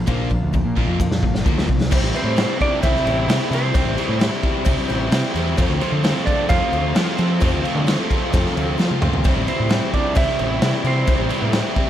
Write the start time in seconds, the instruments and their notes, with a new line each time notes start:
Already playing: electric slide guitar F5
0.08 picked electric bass A#1, overdriven electric guitar A#2 F3 A#3, steel-string acoustic guitar D4 F4, kick
0.30 overdriven electric guitar A#2 F3, steel-string acoustic guitar A#3 D4 F4, kick
0.42 picked electric bass D2
0.54 overdriven electric guitar A#2 F3, steel-string acoustic guitar A#3 D4 F4, kick
0.65 picked electric bass A#2
0.77 overdriven electric guitar A#2 F3 A#3, steel-string acoustic guitar D4 F4, kick
0.87 picked electric bass F2
1.00 overdriven electric guitar A#2 F3, steel-string acoustic guitar A#3 D4 F4, kick
1.12 snare
1.23 picked electric bass G1, overdriven electric guitar A#2 F3, kick
1.35 snare
1.45 picked electric bass D2, overdriven electric guitar A#2 F3 A#3, steel-string acoustic guitar D4 F4, kick
1.58 snare
1.69 picked electric bass C2, overdriven electric guitar A#2 F3, kick
1.81 snare
1.91 picked electric bass C2, overdriven electric guitar C3 E3 G3 C4 E4, tonewheel organ C4 E4 G4 C5, steel-string acoustic guitar G4, kick, crash, cowbell
2.01 picked electric bass A1
2.13 overdriven electric guitar G3 C4 E4, electric slide guitar C5, crash
2.24 picked electric bass A2
2.36 overdriven electric guitar C3 E3 G3 C4 E4, steel-string acoustic guitar G4, snare, cowbell, crash
2.59 overdriven electric guitar G3 C4 E4, lead electric guitar D4, electric slide guitar D5, kick, crash
2.82 picked electric bass C2, overdriven electric guitar C3 E3 G3 C4 E4, steel-string acoustic guitar G4, electric slide guitar E5, kick, cowbell, crash
2.95 snare
3.05 picked electric bass A1, overdriven electric guitar G3 C4 E4, cowbell, crash
3.27 overdriven electric guitar C3 E3 G3 C4, picked electric bass C3, steel-string acoustic guitar G4, snare, cowbell, crash
3.31 overdriven electric guitar E4
3.51 picked electric bass C3, overdriven electric guitar G3 C4 E4, steel-string acoustic guitar G4, crash
3.55 electric slide guitar C5
3.73 picked electric bass C2, overdriven electric guitar C3 E3 G3 C4 E4, steel-string acoustic guitar G4, kick, cowbell, crash
3.85 picked electric bass A1
3.96 overdriven electric guitar G3 C4 E4, crash
4.09 picked electric bass A2
4.19 overdriven electric guitar C3 E3 G3 C4 E4, steel-string acoustic guitar G4, snare, cowbell, crash
4.43 overdriven electric guitar G3 C4 E4, kick, crash
4.65 picked electric bass C2, overdriven electric guitar C3 E3 G3 C4 E4, steel-string acoustic guitar G4, kick, cowbell, crash
4.79 snare
4.88 picked electric bass A1, overdriven electric guitar G3 C4 E4, cowbell, crash
5.11 picked electric bass C3, overdriven electric guitar C3 E3 G3 C4 E4, steel-string acoustic guitar G4, snare, cowbell, crash
5.34 picked electric bass E2, overdriven electric guitar G3 C4 E4, steel-string acoustic guitar G4, crash
5.57 overdriven electric guitar F2 C3 F3 A3 C4 F4, picked electric bass F2, tonewheel organ C4 F4 A4 C5, steel-string acoustic guitar A4, kick, cowbell, crash
5.70 picked electric bass D2
5.80 overdriven electric guitar F3 A3 C4 F4, steel-string acoustic guitar A4, electric slide guitar C5, crash
5.92 picked electric bass D3
6.02 overdriven electric guitar F3 A3 C4 F4, steel-string acoustic guitar A4, snare, cowbell, crash
6.24 overdriven electric guitar A3 C4 F4, lead electric guitar D4, electric slide guitar D5, kick, crash
6.47 overdriven electric guitar F2 C3 F3 A3 C4, picked electric bass F2, lead electric guitar F4, steel-string acoustic guitar A4, electric slide guitar F5, kick, cowbell, crash
6.52 overdriven electric guitar F4
6.71 picked electric bass D2, overdriven electric guitar F3 A3 C4 F4, cowbell, crash
6.94 overdriven electric guitar F3 A3 C4 F4, picked electric bass F3, steel-string acoustic guitar A4, snare, cowbell, crash
7.15 picked electric bass F3, overdriven electric guitar C4 F4, steel-string acoustic guitar A4, electric slide guitar C5, crash
7.21 overdriven electric guitar F3 A3
7.41 overdriven electric guitar F2 C3 F3 A3 C4 F4, picked electric bass F2, steel-string acoustic guitar A4, kick, cowbell, crash
7.53 picked electric bass D2
7.64 overdriven electric guitar F3 A3 C4 F4, crash
7.75 picked electric bass D3
7.87 overdriven electric guitar F3 A3 C4 F4, steel-string acoustic guitar A4, snare, cowbell, crash
8.09 overdriven electric guitar A3 C4 F4, kick, crash
8.32 overdriven electric guitar F2 C3 F3 A3 C4 F4, picked electric bass F2, steel-string acoustic guitar A4, kick, cowbell, crash
8.46 snare
8.56 picked electric bass D2, overdriven electric guitar F3 A3 C4 F4, cowbell, crash
8.79 overdriven electric guitar F3 A3 C4 F4, picked electric bass F3, steel-string acoustic guitar A4, snare, cowbell
8.91 high tom
9.01 picked electric bass C#2, overdriven electric guitar F3 A3 C4 F4, steel-string acoustic guitar A4, mid tom
9.13 floor tom
9.24 picked electric bass C2, overdriven electric guitar C3 E3 G3 C4 E4, tonewheel organ C4 E4 G4 C5, steel-string acoustic guitar G4, kick, cowbell, crash
9.36 picked electric bass A1
9.47 overdriven electric guitar G3 C4 E4, steel-string acoustic guitar G4, electric slide guitar C5, crash
9.60 picked electric bass A2
9.69 overdriven electric guitar E3 G3 C4 E4, steel-string acoustic guitar G4, snare, cowbell, crash
9.92 overdriven electric guitar G3 C4 E4, lead electric guitar D4, electric slide guitar D5, kick, crash
10.15 picked electric bass C2, overdriven electric guitar C3 E3 G3 C4 E4, steel-string acoustic guitar G4, electric slide guitar E5, kick, cowbell, crash
10.28 snare
10.39 picked electric bass A1, overdriven electric guitar G3 C4 E4, cowbell, crash
10.60 picked electric bass C3, overdriven electric guitar E3 G3 C4 E4, steel-string acoustic guitar G4, snare, cowbell, crash
10.83 picked electric bass C3, overdriven electric guitar G3 C4 E4, steel-string acoustic guitar G4, electric slide guitar C5, crash
11.05 picked electric bass C2, overdriven electric guitar C3 E3 G3 C4 E4, steel-string acoustic guitar G4, kick, cowbell, crash
11.19 picked electric bass A1
11.28 overdriven electric guitar G3 C4 E4, steel-string acoustic guitar G4, crash
11.42 picked electric bass A2
11.51 overdriven electric guitar E3 G3 C4 E4, snare, cowbell, crash
11.55 steel-string acoustic guitar G4
11.75 overdriven electric guitar G3 C4 E4, kick, crash